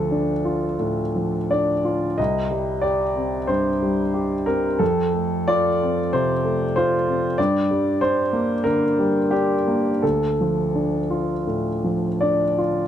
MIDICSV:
0, 0, Header, 1, 2, 480
1, 0, Start_track
1, 0, Tempo, 690449
1, 1518, Time_signature, 4, 2, 24, 8
1, 1518, Tempo, 660793
1, 3918, Tempo, 632244
1, 6318, Tempo, 668896
1, 6798, Tempo, 725514
1, 9152, End_track
2, 0, Start_track
2, 0, Title_t, "Grand piano"
2, 0, Program_c, 0, 0
2, 0, Control_c, 0, 64, 127
2, 0, Note_on_c, 0, 38, 41
2, 0, Note_on_c, 0, 53, 35
2, 0, Note_on_c, 0, 69, 63
2, 79, Note_on_c, 0, 62, 39
2, 217, Note_off_c, 0, 53, 0
2, 313, Note_on_c, 0, 65, 34
2, 451, Note_off_c, 0, 62, 0
2, 517, Note_off_c, 0, 38, 0
2, 552, Note_on_c, 0, 45, 32
2, 694, Note_off_c, 0, 65, 0
2, 804, Note_on_c, 0, 53, 31
2, 950, Note_off_c, 0, 45, 0
2, 1042, Note_off_c, 0, 69, 0
2, 1047, Note_on_c, 0, 74, 59
2, 1056, Note_on_c, 0, 62, 33
2, 1197, Note_off_c, 0, 53, 0
2, 1284, Note_on_c, 0, 65, 34
2, 1432, Note_off_c, 0, 62, 0
2, 1514, Note_on_c, 0, 75, 64
2, 1517, Note_off_c, 0, 65, 0
2, 1519, Note_off_c, 0, 74, 0
2, 1522, Note_on_c, 0, 36, 45
2, 1533, Control_c, 0, 64, 0
2, 1648, Control_c, 0, 64, 127
2, 1753, Note_on_c, 0, 55, 35
2, 1977, Note_on_c, 0, 74, 59
2, 1985, Note_on_c, 0, 67, 38
2, 1987, Note_off_c, 0, 75, 0
2, 2131, Note_off_c, 0, 55, 0
2, 2226, Note_on_c, 0, 60, 33
2, 2371, Note_off_c, 0, 67, 0
2, 2442, Note_off_c, 0, 36, 0
2, 2455, Note_on_c, 0, 72, 62
2, 2461, Note_on_c, 0, 43, 35
2, 2463, Note_off_c, 0, 74, 0
2, 2611, Note_off_c, 0, 60, 0
2, 2708, Note_on_c, 0, 55, 36
2, 2845, Note_off_c, 0, 43, 0
2, 2937, Note_on_c, 0, 67, 38
2, 3088, Note_off_c, 0, 55, 0
2, 3173, Note_on_c, 0, 70, 68
2, 3176, Note_off_c, 0, 72, 0
2, 3178, Note_on_c, 0, 60, 37
2, 3322, Note_off_c, 0, 67, 0
2, 3410, Note_on_c, 0, 69, 63
2, 3416, Note_off_c, 0, 70, 0
2, 3416, Note_on_c, 0, 41, 46
2, 3418, Note_off_c, 0, 60, 0
2, 3435, Control_c, 0, 64, 0
2, 3551, Control_c, 0, 64, 127
2, 3663, Note_on_c, 0, 57, 36
2, 3910, Note_on_c, 0, 74, 80
2, 3912, Note_off_c, 0, 69, 0
2, 3913, Note_on_c, 0, 65, 41
2, 4065, Note_off_c, 0, 57, 0
2, 4176, Note_on_c, 0, 60, 39
2, 4306, Note_off_c, 0, 65, 0
2, 4371, Note_off_c, 0, 41, 0
2, 4399, Note_off_c, 0, 74, 0
2, 4405, Note_on_c, 0, 72, 69
2, 4410, Note_on_c, 0, 48, 43
2, 4552, Note_off_c, 0, 60, 0
2, 4646, Note_on_c, 0, 57, 41
2, 4787, Note_off_c, 0, 48, 0
2, 4872, Note_off_c, 0, 72, 0
2, 4883, Note_on_c, 0, 72, 76
2, 4895, Note_on_c, 0, 65, 48
2, 5024, Note_off_c, 0, 57, 0
2, 5126, Note_on_c, 0, 60, 40
2, 5268, Note_off_c, 0, 65, 0
2, 5355, Note_on_c, 0, 74, 74
2, 5358, Note_off_c, 0, 72, 0
2, 5360, Note_off_c, 0, 60, 0
2, 5360, Note_on_c, 0, 43, 56
2, 5367, Control_c, 0, 64, 0
2, 5481, Control_c, 0, 64, 127
2, 5604, Note_on_c, 0, 55, 42
2, 5834, Note_off_c, 0, 74, 0
2, 5834, Note_on_c, 0, 72, 75
2, 5846, Note_on_c, 0, 62, 46
2, 5982, Note_off_c, 0, 55, 0
2, 6075, Note_on_c, 0, 58, 42
2, 6224, Note_off_c, 0, 62, 0
2, 6290, Note_off_c, 0, 43, 0
2, 6309, Note_on_c, 0, 70, 75
2, 6317, Note_off_c, 0, 72, 0
2, 6318, Note_on_c, 0, 50, 41
2, 6459, Note_off_c, 0, 58, 0
2, 6562, Note_on_c, 0, 55, 40
2, 6699, Note_off_c, 0, 50, 0
2, 6791, Note_on_c, 0, 67, 61
2, 6794, Note_off_c, 0, 70, 0
2, 6801, Note_on_c, 0, 62, 38
2, 6939, Note_off_c, 0, 55, 0
2, 7035, Note_on_c, 0, 58, 36
2, 7174, Note_off_c, 0, 62, 0
2, 7265, Note_on_c, 0, 69, 59
2, 7266, Note_off_c, 0, 67, 0
2, 7271, Note_on_c, 0, 38, 43
2, 7272, Note_off_c, 0, 58, 0
2, 7282, Control_c, 0, 64, 0
2, 7388, Control_c, 0, 64, 127
2, 7518, Note_on_c, 0, 53, 33
2, 7746, Note_on_c, 0, 62, 32
2, 7894, Note_off_c, 0, 53, 0
2, 7980, Note_on_c, 0, 65, 33
2, 8127, Note_off_c, 0, 62, 0
2, 8198, Note_off_c, 0, 38, 0
2, 8223, Note_on_c, 0, 45, 29
2, 8367, Note_off_c, 0, 65, 0
2, 8469, Note_on_c, 0, 53, 30
2, 8618, Note_off_c, 0, 45, 0
2, 8709, Note_on_c, 0, 74, 59
2, 8719, Note_on_c, 0, 62, 36
2, 8864, Note_off_c, 0, 53, 0
2, 8958, Note_on_c, 0, 65, 34
2, 8960, Note_off_c, 0, 69, 0
2, 9106, Note_off_c, 0, 62, 0
2, 9152, Note_off_c, 0, 65, 0
2, 9152, Note_off_c, 0, 74, 0
2, 9152, End_track
0, 0, End_of_file